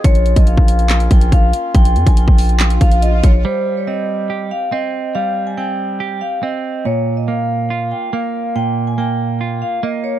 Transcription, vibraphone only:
X:1
M:4/4
L:1/16
Q:1/4=141
K:Dblyd
V:1 name="Vibraphone"
d3 e f6 g2 f4 | g3 a g6 f2 e2 d2 | c3 d e6 f2 e4 | f3 a g6 f2 e4 |
d3 e f6 g2 f4 | g3 a g6 f2 e2 d2 |]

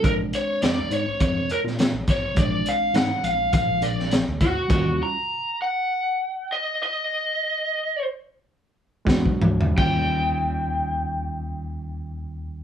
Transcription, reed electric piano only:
X:1
M:4/4
L:1/8
Q:"Swing 16ths" 1/4=101
K:Bbdor
V:1 name="Reed electric piano"
[A,C=D]8 | [A,C=D]8 | [G,DF]2 z6 | z6 [^G,=D^F]2 |
[G,DF]8 |]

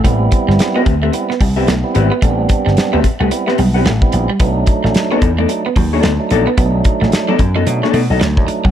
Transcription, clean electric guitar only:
X:1
M:4/4
L:1/16
Q:"Swing 16ths" 1/4=110
K:Amix
V:1 name="Clean electric guitar"
A, z2 G, z B, z A, z B, G, z A, z2 B, | A, z2 G, z B, z A, z B, G, z A, z2 G, | B, z2 A, z B, z A, z B, F, z A, z2 B, | B, z2 A, z F, z F, z A, A, z F, z2 F, |]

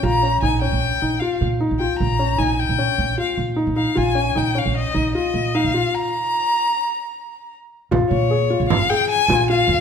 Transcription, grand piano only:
X:1
M:5/4
L:1/8
Q:1/4=152
K:Ebmix
V:1 name="Grand piano"
F D E D2 E F2 E F- | F D E2 D2 F2 E E | F D E D2 E F2 E F- | F z8 z |
F2 A F2 A2 F F2 |]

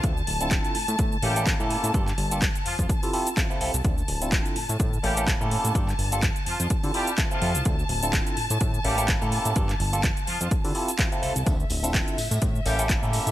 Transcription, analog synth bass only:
X:1
M:4/4
L:1/16
Q:"Swing 16ths" 1/4=126
K:Dm
V:1 name="Analog synth bass" clef=bass
D,, z D,,,3 z A,, A,, A,, z A,,,3 A,, z A,, | G,, z G,,,3 z F,, F,, z6 C,, C,, | D,, z D,,,3 z A,, A,, A,, z A,,,3 A,, z A,, | G,, z G,,,3 z F,, F,, z D, z4 F,, C,, |
D,, z D,,,3 z A,, A,, A,, z A,,,3 A,, z A,, | G,, z G,,,3 z F,, F,, z D, z4 C,, C,, | D,, z D,,,3 z A,, A,, A,, z A,,,3 A,, z A,, |]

